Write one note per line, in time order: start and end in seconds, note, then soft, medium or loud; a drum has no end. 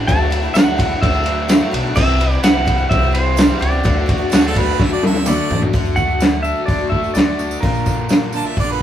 0.00 0.55 F#3 medium
0.00 0.78 A3 medium
0.00 0.54 D4 medium
0.07 0.46 D2 loud
0.07 0.31 D3 medium
0.07 0.29 F#3 medium
0.07 0.31 A3 medium
0.07 0.32 D4 medium
0.07 0.32 E4 medium
0.07 0.56 A5 loud
0.07 kick loud
0.07 ride loud
0.31 0.42 F#3 medium
0.31 0.43 A3 medium
0.31 0.43 D4 medium
0.31 0.41 E4 medium
0.31 ride medium
0.43 0.53 A3 soft
0.43 0.54 D4 medium
0.43 0.54 E4 medium
0.53 0.93 D2 medium
0.53 0.77 D3 medium
0.53 0.75 F#3 medium
0.53 0.77 A3 medium
0.53 0.78 D4 medium
0.53 0.78 E4 medium
0.53 0.98 F#5 loud
0.53 snare loud
0.53 ride loud
0.53 tambourine medium
0.77 0.89 F#3 medium
0.77 0.90 A3 medium
0.77 0.89 D4 medium
0.77 0.88 E4 medium
0.77 kick medium
0.77 ride medium
0.89 1.14 A3 soft
0.89 1.13 D4 medium
0.89 1.12 E4 medium
1.02 1.60 D2 loud
1.02 1.72 D4 medium
1.02 1.68 E5 medium
1.02 kick loud
1.02 ride loud
1.13 1.24 A3 soft
1.13 1.25 D4 medium
1.13 1.25 E4 medium
1.24 1.47 F#3 medium
1.24 1.48 A3 medium
1.24 1.48 D4 medium
1.24 1.49 E4 medium
1.24 ride medium
1.48 1.72 D3 medium
1.48 1.70 F#3 medium
1.48 1.72 A3 medium
1.48 1.72 D4 medium
1.48 1.73 E4 loud
1.48 snare loud
1.48 ride loud
1.48 tambourine loud
1.71 1.92 B1 loud
1.71 1.84 F#3 medium
1.71 1.84 A3 medium
1.71 1.83 D4 medium
1.71 1.82 E4 medium
1.71 ride medium
1.83 1.96 A3 soft
1.83 1.96 D4 soft
1.83 1.95 E4 medium
1.95 2.35 C2 loud
1.95 2.19 C3 medium
1.95 2.17 E3 loud
1.95 2.19 G3 medium
1.95 2.19 C4 medium
1.95 2.20 E4 loud
1.95 2.40 E5 loud
1.95 kick loud
1.95 crash loud
2.19 2.31 E3 medium
2.19 2.32 G3 medium
2.19 2.31 C4 medium
2.19 2.30 E4 medium
2.19 ride medium
2.31 2.43 G3 medium
2.31 2.44 C4 medium
2.31 2.43 E4 medium
2.43 2.81 C2 loud
2.43 2.67 C3 medium
2.43 2.64 E3 medium
2.43 2.65 G3 medium
2.43 2.66 C4 medium
2.43 2.67 E4 medium
2.43 2.87 F#5 loud
2.43 snare loud
2.43 ride loud
2.43 tambourine medium
2.65 2.78 E3 medium
2.65 2.78 G3 medium
2.65 2.78 C4 medium
2.65 2.76 E4 medium
2.65 kick medium
2.65 ride medium
2.78 3.03 G3 soft
2.78 3.01 C4 medium
2.78 3.00 E4 medium
2.89 3.48 C2 loud
2.89 3.60 C4 medium
2.89 3.14 E5 loud
2.89 kick loud
2.89 ride loud
3.01 3.13 G3 soft
3.01 3.14 C4 medium
3.01 3.13 E4 medium
3.13 3.35 E3 medium
3.13 3.36 G3 medium
3.13 3.37 C4 medium
3.13 3.37 E4 medium
3.13 3.58 C5 loud
3.13 ride medium
3.36 3.60 C3 medium
3.36 3.58 E3 medium
3.36 3.59 G3 medium
3.36 3.60 C4 medium
3.36 3.61 E4 medium
3.36 snare loud
3.36 ride loud
3.36 tambourine loud
3.59 3.80 C#2 loud
3.59 3.72 E3 medium
3.59 3.72 G3 medium
3.59 3.71 C4 medium
3.59 3.70 E4 medium
3.59 5.22 D5 loud
3.59 ride medium
3.71 3.84 G3 soft
3.71 3.84 C4 medium
3.71 3.84 E4 soft
3.83 4.23 D2 loud
3.83 4.05 D3 medium
3.83 4.06 A3 medium
3.83 4.07 D4 loud
3.83 4.08 F#4 medium
3.83 kick loud
3.83 ride loud
4.06 4.19 D3 medium
4.06 4.19 A3 medium
4.06 4.18 D4 medium
4.06 4.17 F#4 medium
4.06 kick medium
4.06 ride medium
4.18 4.30 A3 medium
4.18 4.30 D4 medium
4.18 4.31 F#4 medium
4.30 4.70 D2 loud
4.30 4.52 D3 medium
4.30 4.54 A3 medium
4.30 4.54 D4 loud
4.30 4.55 F#4 medium
4.30 snare loud
4.30 ride loud
4.30 tambourine medium
4.34 4.44 F#4 medium
4.47 4.60 A4 medium
4.54 4.66 D3 medium
4.54 4.67 A3 medium
4.54 4.67 D4 medium
4.54 4.64 F#4 medium
4.54 kick medium
4.54 ride medium
4.59 4.85 B4 medium
4.66 4.91 A3 soft
4.66 4.89 D4 soft
4.66 4.88 F#4 medium
4.80 5.37 D2 medium
4.80 5.49 D4 medium
4.80 4.92 E5 medium
4.80 kick loud
4.80 snare medium
4.89 5.01 A3 medium
4.89 5.02 D4 medium
4.89 5.02 F#4 medium
4.89 5.03 D5 medium
5.01 5.24 D3 medium
5.01 5.25 A3 medium
5.01 5.25 D4 medium
5.01 5.26 F#4 medium
5.01 high tom medium
5.06 5.30 E5 medium
5.14 high tom medium
5.25 5.48 D3 medium
5.25 5.49 A3 medium
5.25 5.49 D4 medium
5.25 5.50 F#4 loud
5.25 5.62 D5 loud
5.25 mid tom medium
5.25 tambourine loud
5.49 5.69 A1 loud
5.49 5.61 D3 medium
5.49 5.61 A3 medium
5.49 5.62 D4 medium
5.49 5.60 F#4 medium
5.49 floor tom loud
5.61 5.73 A3 soft
5.61 5.74 D4 soft
5.61 5.73 F#4 medium
5.61 floor tom loud
5.73 6.50 D2 loud
5.73 5.95 D3 medium
5.73 5.96 A3 medium
5.73 5.97 D4 loud
5.73 5.98 F#4 loud
5.73 kick loud
5.73 open hi-hat medium
5.85 tambourine soft
5.96 6.08 D3 medium
5.96 6.09 A3 medium
5.96 6.09 D4 medium
5.96 6.07 F#4 medium
5.96 6.42 F#5 loud
5.96 kick medium
5.96 tambourine medium
6.08 6.20 A3 soft
6.08 6.21 D4 medium
6.08 6.20 F#4 medium
6.20 6.42 D3 medium
6.20 6.43 A3 medium
6.20 6.44 D4 medium
6.20 6.45 F#4 medium
6.20 snare loud
6.20 open hi-hat medium
6.20 tambourine medium
6.43 6.55 D3 medium
6.43 6.56 A3 medium
6.43 6.56 D4 medium
6.43 6.55 F#4 medium
6.43 6.68 E5 medium
6.43 tambourine medium
6.56 6.67 A3 soft
6.56 6.68 D4 soft
6.56 6.67 F#4 medium
6.66 7.07 D2 medium
6.66 6.79 D3 soft
6.66 6.80 A3 medium
6.66 6.79 D4 medium
6.66 6.91 D5 loud
6.66 kick loud
6.66 open hi-hat soft
6.66 tambourine soft
6.70 6.77 F#4 medium
6.79 7.04 A3 soft
6.79 7.03 D4 soft
6.79 7.01 F#4 medium
6.89 7.62 A3 medium
6.89 7.15 E5 medium
6.89 kick medium
7.03 7.14 A3 soft
7.03 7.15 D4 medium
7.03 7.14 F#4 soft
7.03 tambourine soft
7.14 7.54 D2 loud
7.14 7.38 D3 medium
7.14 7.39 A3 medium
7.14 7.39 D4 medium
7.14 7.39 F#4 medium
7.14 7.58 D5 medium
7.14 snare loud
7.14 open hi-hat medium
7.14 tambourine medium
7.39 7.62 D3 medium
7.39 7.63 A3 medium
7.39 7.63 D4 medium
7.39 7.64 F#4 medium
7.39 tambourine medium
7.51 tambourine medium
7.61 8.40 A#1 loud
7.61 7.86 A#2 medium
7.61 7.84 D3 medium
7.61 7.86 A#3 medium
7.61 7.87 D4 medium
7.61 7.87 F4 medium
7.61 8.52 A#4 medium
7.61 kick loud
7.61 open hi-hat medium
7.75 tambourine soft
7.85 7.97 D3 medium
7.85 7.98 A#3 medium
7.85 7.97 D4 medium
7.85 7.95 F4 medium
7.85 kick medium
7.85 tambourine medium
7.96 8.08 A#3 soft
7.96 8.09 D4 medium
7.96 8.09 F4 soft
8.09 8.21 A#2 medium
8.09 8.21 D3 medium
8.09 8.21 A#3 medium
8.09 8.22 D4 medium
8.09 8.20 F4 medium
8.09 snare loud
8.09 open hi-hat medium
8.09 tambourine medium
8.21 8.32 A#3 soft
8.21 8.33 D4 medium
8.21 8.33 F4 medium
8.32 8.44 D3 medium
8.32 8.45 A#3 medium
8.32 8.45 D4 medium
8.32 8.44 F4 medium
8.32 8.48 A5 medium
8.32 tambourine medium
8.45 8.56 A#3 soft
8.45 8.57 D4 medium
8.45 8.56 F4 medium
8.45 8.57 E5 medium
8.56 8.82 A#1 loud
8.56 8.68 D3 medium
8.56 8.69 A#3 medium
8.56 8.68 D4 medium
8.56 8.67 F4 medium
8.56 8.73 D5 medium
8.56 kick loud
8.56 open hi-hat medium
8.56 tambourine soft
8.68 8.82 A#3 soft
8.68 8.82 D4 medium
8.68 8.82 F4 medium
8.68 8.81 B4 medium